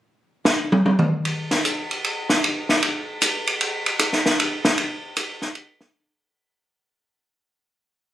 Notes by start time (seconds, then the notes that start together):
0.45 snare
0.72 high tom
0.86 high tom
0.99 mid tom
1.25 ride
1.51 snare, ride
1.65 hi-hat pedal, ride
1.91 ride
2.04 ride
2.30 snare
2.44 ride
2.69 snare
2.82 ride
3.22 hi-hat pedal, ride
3.47 ride
3.61 ride
3.86 ride
3.99 hi-hat pedal, ride
4.13 snare
4.26 snare
4.40 ride
4.65 snare
4.78 ride
5.16 hi-hat pedal, ride
5.42 snare
5.55 ride
5.81 snare